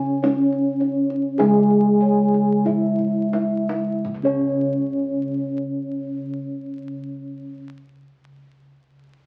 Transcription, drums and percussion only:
0.24 kendang slap soft
0.24 kendang high medium
0.53 kendang slap soft
0.81 kendang slap soft
1.10 kendang slap soft
1.40 kendang high medium
1.70 kendang slap soft
2.34 kendang slap soft
2.66 kendang slap soft
2.66 kendang low medium
2.99 kendang low soft
3.33 kendang high medium
3.69 kendang high medium
4.05 kendang low medium

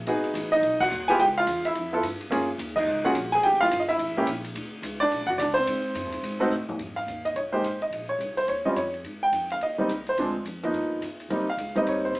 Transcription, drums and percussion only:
0.07 ride medium
0.24 ride soft
0.35 hi-hat pedal medium
0.35 ride medium
0.53 ride soft
0.63 ride medium
0.80 kick medium
0.80 crash medium
0.91 hi-hat pedal soft
1.09 ride soft
1.20 ride medium
1.47 hi-hat pedal medium
1.47 ride medium
1.65 ride soft
1.75 ride medium
2.03 hi-hat pedal soft
2.03 ride medium
2.21 ride soft
2.32 ride medium
2.59 hi-hat pedal medium
2.59 ride medium
2.76 kick medium
2.76 crash medium
3.15 hi-hat pedal medium
3.15 ride medium
3.32 ride soft
3.43 ride soft
3.53 snare soft
3.63 snare soft
3.71 hi-hat pedal medium
3.71 ride medium
3.89 ride soft
3.99 ride medium
4.27 hi-hat pedal medium
4.27 ride medium
4.44 ride soft
4.56 ride medium
4.83 hi-hat pedal soft
4.83 ride medium
5.12 ride medium
5.40 hi-hat pedal medium
5.40 ride medium
5.57 ride soft
5.67 ride medium
5.95 hi-hat pedal medium
5.95 ride medium
6.12 ride soft
6.24 ride medium
6.51 hi-hat pedal medium
6.69 floor tom medium
6.79 kick medium
6.79 ride soft
6.97 ride soft
7.08 hi-hat pedal medium
7.08 ride soft
7.25 ride soft
7.36 ride soft
7.64 hi-hat pedal soft
7.64 ride soft
7.82 ride soft
7.92 ride soft
8.20 hi-hat pedal soft
8.20 ride soft
8.37 ride soft
8.48 ride soft
8.76 hi-hat pedal soft
8.76 ride medium
8.94 ride soft
9.04 ride soft
9.33 hi-hat pedal soft
9.33 ride soft
9.50 ride soft
9.61 ride soft
9.89 hi-hat pedal soft
9.89 ride soft
10.06 ride soft
10.17 ride soft
10.45 hi-hat pedal soft
10.45 ride soft
10.63 ride soft
10.74 ride soft
11.02 hi-hat pedal soft
11.02 ride soft
11.20 ride soft
11.30 ride soft
11.58 hi-hat pedal soft
11.58 ride medium
11.76 ride soft
11.87 ride soft
12.15 hi-hat pedal soft
12.15 ride soft

